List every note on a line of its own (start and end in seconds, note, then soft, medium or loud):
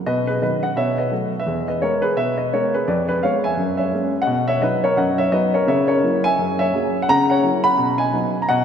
0.06 0.36 B2 medium
0.06 0.26 B4 medium
0.06 0.27 D#5 medium
0.27 0.41 G#4 medium
0.27 0.41 B4 medium
0.42 0.61 D#3 soft
0.42 0.62 F#3 soft
0.42 0.62 B3 soft
0.42 0.62 B4 medium
0.42 0.62 D#5 medium
0.63 0.76 D#5 medium
0.63 0.77 F#5 medium
0.76 1.06 B2 medium
0.76 0.97 C#5 medium
0.76 0.98 E5 medium
0.98 1.38 B4 medium
0.98 1.40 D#5 medium
1.11 1.31 F#3 soft
1.11 1.31 A3 soft
1.11 1.31 B3 soft
1.40 1.66 B4 medium
1.40 1.68 E5 medium
1.47 1.76 E2 medium
1.68 1.82 B4 soft
1.68 1.82 D#5 medium
1.82 2.01 G#3 soft
1.82 2.01 B3 soft
1.82 2.02 A#4 medium
1.82 2.03 C#5 medium
2.02 2.16 G#4 medium
2.02 2.17 B4 medium
2.16 2.46 B2 medium
2.16 2.37 B4 medium
2.16 2.38 E5 medium
2.38 2.52 B4 soft
2.38 2.52 D#5 medium
2.53 2.72 G#3 soft
2.53 2.72 B3 soft
2.53 2.73 A#4 medium
2.53 2.74 C#5 medium
2.74 2.88 G#4 medium
2.74 2.88 B4 medium
2.88 3.17 F2 medium
2.88 3.07 B4 medium
2.88 3.08 D5 medium
3.09 3.22 G#4 medium
3.09 3.23 B4 medium
3.23 3.42 G#3 soft
3.23 3.43 B3 medium
3.23 3.43 C#5 medium
3.23 3.44 F5 medium
3.44 3.76 E5 medium
3.44 3.79 G#5 medium
3.57 3.87 F#2 medium
3.77 4.18 C#5 soft
3.77 4.20 E5 medium
3.93 4.12 G#3 soft
3.93 4.12 A#3 soft
3.93 4.12 C#4 soft
4.22 4.48 D#5 medium
4.22 4.49 F#5 medium
4.27 4.57 B2 medium
4.48 4.62 C#5 medium
4.48 4.62 E5 medium
4.62 4.81 F#3 soft
4.62 4.82 B3 soft
4.62 4.82 D#4 medium
4.62 4.82 B4 medium
4.62 4.83 D#5 medium
4.84 4.97 A#4 medium
4.84 4.98 C#5 medium
4.97 5.27 F#2 medium
4.97 5.17 D#5 medium
4.97 5.18 F#5 medium
5.18 5.32 C#5 medium
5.18 5.33 E5 medium
5.32 5.52 F#3 medium
5.32 5.52 B3 medium
5.32 5.52 D#4 soft
5.32 5.53 B4 medium
5.32 5.53 D#5 medium
5.54 5.68 A#4 medium
5.54 5.67 C#5 medium
5.67 5.97 C#3 medium
5.67 5.86 C#5 medium
5.67 5.89 E5 medium
5.88 6.21 A#4 medium
5.88 6.23 C#5 medium
6.03 6.22 F#3 soft
6.03 6.22 A#3 medium
6.03 6.23 E4 soft
6.24 6.57 E5 medium
6.24 6.59 G#5 loud
6.39 6.68 F#2 medium
6.59 6.99 C#5 medium
6.59 7.01 E5 medium
6.74 6.93 F#3 soft
6.74 6.93 A#3 soft
6.74 6.94 G#4 medium
7.02 7.08 F#5 medium
7.09 7.38 C#3 medium
7.09 7.28 F#5 medium
7.09 7.29 A#5 loud
7.30 7.63 C#5 medium
7.30 7.63 F#5 medium
7.43 7.62 F#3 soft
7.43 7.63 A#3 soft
7.43 7.63 E4 soft
7.64 7.97 F#5 medium
7.64 7.99 B5 loud
7.78 8.08 B2 medium
7.98 8.38 D#5 medium
7.98 8.41 G#5 medium
8.13 8.32 F#3 soft
8.13 8.33 B3 medium
8.13 8.33 D#4 medium
8.42 8.49 A#5 medium
8.49 8.65 B2 medium
8.49 8.65 D#5 medium
8.49 8.65 F#5 loud